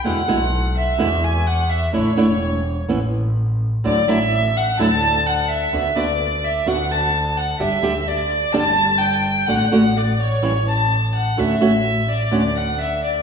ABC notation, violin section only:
X:1
M:4/4
L:1/8
Q:1/4=127
K:D
V:1 name="Violin section"
f3 e2 ^g f e | c4 z4 | d e2 f a2 f e- | e d2 e f a2 f |
e2 d2 a2 g2 | f2 d c2 a2 f | e3 d2 f e d |]